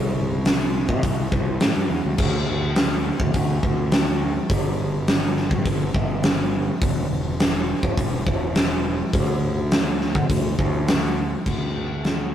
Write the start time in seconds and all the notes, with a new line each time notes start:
Already playing: C2
0.45 snare, open hi-hat
0.89 C3, kick
1.03 C2, kick, open hi-hat
1.32 C2, kick
1.60 A2, snare, open hi-hat
1.76 G2
1.90 E2
2.05 D2
2.18 D2, kick, crash
2.48 D2
2.76 snare, open hi-hat
3.20 D2, kick
3.34 D2, kick, open hi-hat
3.63 D2, kick
3.92 snare, open hi-hat
4.50 G1, kick, open hi-hat
5.08 snare, open hi-hat
5.37 snare
5.51 G2, kick
5.66 G1, kick, open hi-hat
5.94 G1, kick
6.23 snare, open hi-hat
6.82 E1, kick, open hi-hat
7.10 E1
7.40 snare, open hi-hat
7.83 E1, kick
7.97 E1, kick, open hi-hat
8.27 E1, kick
8.55 snare, open hi-hat
9.13 D2, kick, open hi-hat
9.71 snare, open hi-hat
10.01 snare
10.15 D3, kick
10.29 D2, kick, open hi-hat
10.59 D2, kick
10.88 snare, open hi-hat
11.46 D2, kick, crash
12.05 snare, open hi-hat